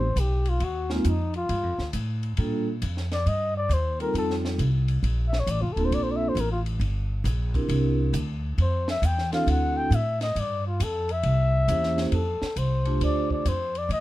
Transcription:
Already playing: A1 C5
0.16 B1 G4, hi-hat pedal, ride
0.45 F4, ride
0.60 D#2 F#4, ride
0.90 G#3 A#3 C4 D#4 F4, snare
0.94 A#3
1.05 F2 D#4, hi-hat pedal, ride
1.34 F4, ride
1.49 G2, ride
1.63 F2
1.78 D2, snare
1.93 A2, hi-hat pedal, ride
2.23 ride
2.37 A#2 G3 A#3 D4 F4 A4, ride
2.82 F2, hi-hat pedal, ride
2.97 snare
3.12 D5, snare, ride
3.26 G2 D#5, ride
3.57 D5
3.69 D#2, hi-hat pedal, ride
3.73 C5
4.00 G3 C4 D#4 F4 A4 A#4, ride
4.13 F2, ride
4.18 A4
4.30 snare
4.45 snare
4.58 C2, hi-hat pedal, ride
4.88 ride
5.03 A#1, ride
5.28 E5
5.33 snare
5.40 C#5
5.47 A1, hi-hat pedal, ride
5.51 D5
5.61 F1 F4
5.72 D1 A4
5.77 A#3 C4 D4 F4 A4, ride
5.85 C5
5.91 A#1 D5, ride
6.03 C5
6.11 D5
6.16 E5
6.29 C5
6.35 A1, hi-hat pedal, ride
6.40 A#4
6.51 F4
6.66 ride
6.80 G1, ride
7.24 A#1, hi-hat pedal, ride
7.54 C4 D4 E4 G4 A#4, kick, ride
7.69 C2, ride
8.13 D2, hi-hat pedal, ride
8.58 F2 C5, ride
8.88 E5, snare
9.02 E2 G5, hi-hat pedal, ride
9.18 snare
9.32 C4 D4 E4 F#4 A4 F5, snare, ride
9.47 D2 F#5, ride
9.77 G5
9.91 A2, hi-hat pedal, ride
9.95 E5
10.21 D#5, snare, ride
10.36 G2 D5, ride
10.67 F4
10.80 F2 A4, hi-hat pedal, ride
11.09 E5, ride
11.23 C2, ride
11.68 E2 A#3 C#4 E4 G4 C5, hi-hat pedal, ride
11.83 snare
11.98 snare, ride
12.12 F2 A4, ride
12.42 muted upright bass stroke, snare
12.56 C2 C5, hi-hat pedal, ride
12.85 A3 D4 F4 G4 C5, ride
13.00 D2 D5, ride
13.30 D5, kick
13.45 F2 C5, hi-hat pedal, ride
13.75 D5, ride
13.89 A2 D#5, ride

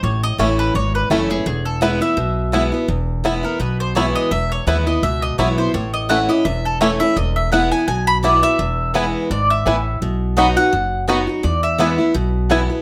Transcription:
0.03 A1 A2 C#5
0.23 D#5
0.38 A1 E3 A3 C#4 E4 C#5
0.59 B4
0.74 G#1 E2 C#5
0.95 B4
1.10 F#1 E3 A3 C#4 E4 A4
1.30 C#4 E4 G#4
1.46 E1 E2 G#4
1.65 A4
1.81 E3 G#3 B3 E4 B4
2.01 B3 E4 E5
2.17 B1 B2
2.52 E3 G#3 B3 E4
2.72 B3 E4
2.88 E1 E2
3.24 E3 G#3 B3 E4
3.43 B3 E4 A#4
3.60 B1 B2 B4
3.80 C5
3.95 E3 G#3 B3 E4 C#5
4.15 D#5
4.31 E1 E2 E5
4.52 C#5
4.67 D#2 E3 G#3 B3 E4 B4
4.86 B3 E4 D#5
5.03 C#2 B2 E5
5.22 D#5
5.38 B1 E3 G#3 B3 E4 C#5
5.58 B3 E4 C5
5.74 A1 A2 C#5
5.94 D#5
6.09 E3 A3 C#4 E4 F#5
6.29 C#4 E4 D#5
6.45 E1 E2 E5
6.65 A4
6.81 E3 A3 C#4 E4 C#5
7.00 C#4 E4 E5
7.16 E1 E2 D#5
7.36 E5
7.52 E3 G#3 B3 E4 F#5
7.72 B3 E4 G#5
7.88 B1 B2 G#5
8.07 B5
8.23 E3 G#3 B3 E4 D5
8.42 B3 E4 E5
8.59 E1 E2
8.94 E3 G#3 B3 E4 B4 G#5
9.30 G#1 G#2 D5
9.50 E5
9.66 A1 A2 B3 E4 B4 G#5
10.02 B1 B2
10.37 F#3 B3 D#4 F#4 D#5 B5
10.56 D#4 F#4 F#5
10.73 F#1 F#2
11.08 F#3 B3 D#4 F#4 D#5 B5
11.27 D#4 F#4
11.43 E2 D5
11.63 E5
11.78 E3 G#3 B3 E4 B4 G#5
11.98 B3 E4
12.14 B1 B2
12.49 E3 G#3 B3 E4 B4 G#5
12.70 B3 E4

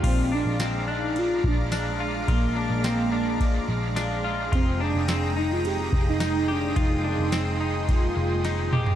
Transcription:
0.03 A#1 A#2 F3 G#3 C4 D4 F4 F5 A#5 D6, kick, crash, ride
0.31 G#3 D4 F4
0.46 A#1
0.59 F3 G#3 C4 D4, snare, ride, tambourine
0.63 F4
0.87 D4 D#4 F4
0.91 G#3
1.15 A#2 F3 G#3 D4 F4, ride
1.43 A#1 D4 F4, kick
1.47 G#3 D4
1.71 F3 G#3 D4, snare, ride, tambourine
1.75 F4
1.99 D4 F4
2.03 G#3
2.27 A#1 A#2 F3 G#3 D4 F4, kick, ride
2.32 A#3
2.55 G#3 D4 F4
2.70 A#1
2.83 F3 G#3 C4 D4, snare, ride, tambourine
2.87 F4
3.11 D4 F4
3.15 G#3
3.39 A#2 F3 G#3 D4 F4, kick, ride
3.67 A#1 D4 F4
3.71 G#3
3.95 F3 G#3 D4, snare, ride, tambourine
4.00 F4
4.23 D4 F4
4.27 G#3
4.52 F1 F2 C3 D#3 A#3 C4 F4 G#4 G5 A#5 D#6, kick, ride
4.79 A#3 C4 D4 G#4
4.83 D#3
4.95 F1
5.08 D#3 A#3 C4, snare, ride, tambourine
5.12 G#4
5.36 A#3 C4 D#4 G#4
5.40 D#3
5.53 F4
5.64 F2 C3 D#3 A#3 C4 G4 G#4, ride
5.92 F1 A#3 C4 G#4, kick
5.96 D#3
6.09 D#4
6.19 D#3 A#3 C4 D#4, snare, ride, tambourine
6.23 G#4
6.48 D#3 A#3 C4 D4 G4 G#4
6.76 F1 F2 C3 D#3 A#3 C4 D#4 F4 G#4 C6, kick, ride
7.04 A#3 C4 D4 G#4
7.08 D#3
7.19 F1
7.32 D#3 A#3 C4, snare, ride, tambourine
7.36 G#4
7.60 A#3 C4 D#4 G#4
7.64 D#3
7.88 F2 C3 D#3 A#3 C4 F4 G#4, kick, ride
8.16 F1 A#3 C4 G#4
8.20 D#3
8.44 D#3 A#3 C4 D#4, snare, ride
8.48 G#4
8.72 A#3 C4 G4 G#4, mid tom
8.76 D#3
8.86 floor tom

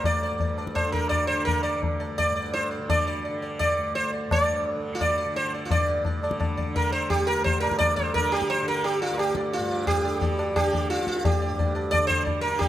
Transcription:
Already playing: D2 G2 D3
0.04 D5, tabla tin, tabla ge
0.23 D5
0.31 G2
0.40 D5, tabla tin, tabla ge
0.58 D5, tabla na
0.67 tabla ke
0.75 C5, tabla na, tabla ge
0.81 D3
0.92 A#4, tabla ge
1.09 D5, tabla tin, tabla ge
1.27 D3 C5
1.45 A#4, tabla tin, tabla ge
1.63 D5
1.80 D2, tabla tin, tabla ge
2.00 D5, tabla na
2.18 D5, tabla tin, tabla ge
2.30 G2
2.36 D5
2.54 C5, tabla te
2.71 D5
2.79 D3
2.90 D5, tabla na, tabla ge
3.07 D5
3.25 D3 D5
3.42 D5
3.59 D5, tabla tin, tabla ge
3.78 D2
3.95 C5, tabla te
4.13 D5
4.27 G2
4.31 D5, tabla na, tabla ge
4.76 D3
4.95 F4
5.01 D5, tabla tin, tabla ge
5.18 D5
5.25 D3
5.36 C5, tabla te
5.54 D5
5.65 F4
5.71 G2 D5, tabla tin, tabla ge
5.88 D5
6.05 D5, tabla tin, tabla ge
6.19 D3
6.23 D5, tabla na
6.31 tabla ke
6.40 D5, tabla na, tabla ge
6.57 D5, tabla ge
6.67 D3
6.76 A#4, tabla tin, tabla ge
6.92 C5
7.10 G4, tabla tin, tabla ge
7.17 D2
7.27 A#4
7.44 C5, tabla tin, tabla ge
7.60 A#4, tabla na
7.65 G2
7.71 tabla ke
7.79 D5, tabla na, tabla ge
7.96 C5, tabla ge
8.14 D3 A#4, tabla tin, tabla ge
8.32 G4, tabla na
8.42 tabla ke
8.50 C5, tabla tin
8.62 D3
8.68 A#4
8.84 G4, tabla tin
9.02 F4, tabla na
9.11 D2 A#4
9.18 G4, tabla na
9.35 D5, tabla ke
9.53 F4, tabla tin
9.58 G2
9.71 D5
9.87 G4, tabla tin, tabla ge
10.04 D3 D5
10.21 D5, tabla tin, tabla ge
10.39 D5, tabla na
10.55 D3 G4, tabla na, tabla ge
10.73 D5, tabla ge
10.90 F4, tabla te
10.99 D2, tabla te
11.07 F4, tabla ke
11.16 tabla te
11.25 G4, tabla tin, tabla ge
11.42 D5
11.49 G2
11.59 D5, tabla tin, tabla ge
11.75 D5, tabla na
11.91 D5, tabla na, tabla ge
11.97 D3
12.07 C5, tabla ge
12.25 D5, tabla tin, tabla ge
12.41 D3 A#4
12.59 G4, tabla tin, tabla ge

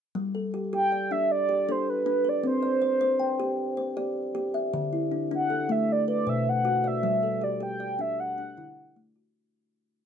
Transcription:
0.15 G3
0.35 A4
0.54 G4
0.73 G4 G5
0.92 D5
1.11 D4 E5
1.31 D5
1.49 G4
1.69 D4 A4 C5
1.89 B4
2.06 D4
2.25 B4
2.29 D5
2.44 C4 C5
2.63 D5
2.82 C5
3.01 C5
3.19 G5
3.40 G4
3.77 C5
3.97 G4 D5
4.35 G4
4.54 E5
4.74 D3
4.93 E4
5.12 D4
5.31 D4 F#5
5.50 A4
5.69 A3 E5
5.92 D5
6.08 B4 D5
6.27 B2 C5 E5
6.49 F#5
6.65 F#4
6.84 D5 E5
7.03 G3
7.23 A4
7.41 G4 D5
7.60 G4 G5
7.80 D5
7.99 D4 E5
8.20 F#5
8.38 D4
8.57 D3 E4
8.96 A3
9.16 F#4

